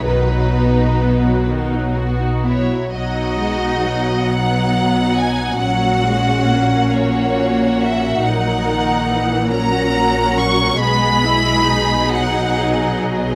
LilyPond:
<<
  \new Staff \with { instrumentName = "Violin section" } { \time 6/8 \key b \major \tempo 4. = 45 b'4. r4 cis''8 | dis''4. fis''4 gis''8 | fis''4. cis''4 e''8 | fis''4. ais''4 cis'''8 |
b''4. fis''4 r8 | }
  \new Staff \with { instrumentName = "Violin section" } { \time 6/8 \key b \major << { dis'4. dis'8 fis'8 e'8 | fis''2.~ | fis''4. fis''4.~ | fis''4. fis''4. |
dis''2. | } \\ { r2. | fis'4. dis'4. | fis'4. fis'4. | ais'4. ais'4. |
gis'2. | } >> }
  \new Staff \with { instrumentName = "Viola section" } { \clef bass \time 6/8 \key b \major << { fis'2~ fis'8. r16 | dis'4. b4. | cis'2. | dis'4. cis'4. |
b8 e'8 dis'2 | } \\ { dis16 fis16 b16 dis'16 b16 fis16 dis16 fis16 b16 dis'16 b16 fis16 | fis8 gis8 fis2 | fis8 gis8 ais2 | fis8 dis8 e8 fis4. |
gis4. fis4. | } >> }
  \new Staff \with { instrumentName = "Cello section" } { \clef bass \time 6/8 \key b \major b,2~ b,8. r16 | b,2. | ais,2. | ais,2. |
b,2. | }
  \new Staff \with { instrumentName = "Double bass section" } { \clef bass \time 6/8 \key b \major b,,2~ b,,8. r16 | b,,2. | ais,,2. | ais,,2. |
b,,2. | }
>>